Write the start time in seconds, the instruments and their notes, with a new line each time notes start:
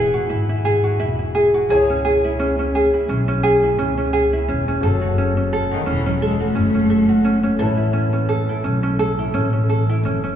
Already playing: upright bass E1, ukulele E4 G#4, upright piano E4 G#4 B4 F#5
0.14 ukulele F#4
0.29 upright bass G#1, ukulele E4
0.49 ukulele E4
0.65 ukulele G#4
0.84 ukulele F#4
0.99 upright bass E1, ukulele E4
1.19 ukulele E4
1.35 ukulele G#4
1.54 ukulele F#4
1.69 upright bass C#2, upright piano E4 G#4 C#5 G#5, ukulele G#4
1.90 ukulele C#4
2.05 ukulele G#4
2.25 ukulele E4
2.39 ukulele C#4
2.59 ukulele C#4
2.75 ukulele G#4
2.94 ukulele E4
3.08 upright bass B1, ukulele C#4
3.28 ukulele C#4
3.43 ukulele G#4
3.63 ukulele E4
3.79 upright bass C#2, ukulele C#4
3.98 ukulele C#4
4.13 ukulele G#4
4.33 ukulele E4
4.49 upright bass E1, ukulele C#4
4.68 ukulele C#4
4.80 upright bass F#1, upright piano F#4 A4 C#5, ukulele A4
4.85 upright piano A5
5.01 ukulele F#4
5.18 ukulele C#4
5.37 ukulele C#4
5.53 ukulele A4
5.71 cello D#3, ukulele F#4
5.86 upright bass E1, cello E3, ukulele C#4
6.06 cello F#3, ukulele C#4
6.22 cello G#3, ukulele A4
6.40 cello A3, ukulele F#4
6.55 upright bass F#1, ukulele C#4
6.74 ukulele C#4
6.90 ukulele A4
7.09 ukulele F#4
7.24 ukulele C#4
7.43 ukulele C#4
7.58 upright bass A1, upright piano E4 B4 C#5 A5, ukulele A4
7.78 ukulele E4
7.93 ukulele C#4
8.13 ukulele C#4
8.29 ukulele A4
8.49 ukulele E4
8.64 upright bass B1, ukulele C#4
8.83 ukulele C#4
8.99 ukulele A4
9.19 ukulele E4
9.34 upright bass A1, ukulele C#4
9.53 ukulele C#4
9.69 ukulele A4
9.89 ukulele E4
10.03 upright bass F#1, ukulele C#4
10.23 ukulele C#4